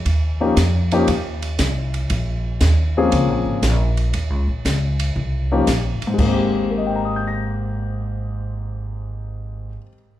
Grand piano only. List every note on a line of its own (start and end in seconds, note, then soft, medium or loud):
0.40 0.55 F3 medium
0.40 0.56 A#3 medium
0.40 0.56 C#4 medium
0.40 0.56 D#4 medium
0.40 0.56 G4 medium
0.92 1.07 F3 medium
0.92 1.07 A#3 medium
0.92 1.07 C#4 medium
0.92 1.07 D#4 medium
0.92 1.07 G4 medium
2.97 3.61 F3 medium
2.97 3.61 A#3 medium
2.97 3.61 C4 medium
2.97 3.61 C#4 medium
2.97 3.61 G#4 medium
5.52 5.66 F3 medium
5.52 5.66 A#3 medium
5.52 5.67 C#4 medium
5.52 5.67 D#4 medium
5.52 5.67 G4 medium
6.07 9.69 G#2 medium
6.14 9.75 G#3 medium
6.20 9.81 A#3 medium
6.26 9.88 C4 medium
6.33 9.94 G4 medium
6.70 10.20 A#4 soft
6.78 10.20 D#5 soft
6.87 10.20 G5 soft
6.96 10.20 A#5 soft
7.05 10.20 D#6 soft
7.16 10.20 G6 soft
7.28 10.20 A#6 soft